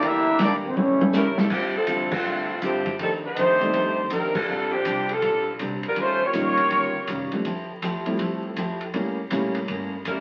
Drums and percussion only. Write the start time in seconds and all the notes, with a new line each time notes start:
0.02 kick, ride
0.39 kick, snare, hi-hat pedal, ride
0.77 high tom
1.01 high tom
1.13 snare, hi-hat pedal
1.38 snare
1.50 kick, crash
1.87 kick, hi-hat pedal, ride
2.11 kick, crash
2.62 kick, hi-hat pedal, ride
2.86 kick, ride
2.99 kick, ride
3.36 kick, hi-hat pedal, ride
3.61 ride
3.73 kick, ride
4.10 kick, hi-hat pedal, ride
4.35 kick, crash
4.85 kick, hi-hat pedal, ride
5.09 ride
5.22 kick, ride
5.59 kick, hi-hat pedal, ride
5.83 ride
5.96 kick, ride
6.33 kick, hi-hat pedal, ride
6.57 ride
6.70 kick, ride
7.07 kick, hi-hat pedal, ride
7.32 ride
7.45 kick, ride
7.82 kick, hi-hat pedal, ride
8.06 ride
8.19 kick, ride
8.56 kick, hi-hat pedal, ride
8.81 ride
8.94 kick, ride
9.30 kick, hi-hat pedal, ride
9.55 ride
9.68 kick, ride
10.05 kick, hi-hat pedal, ride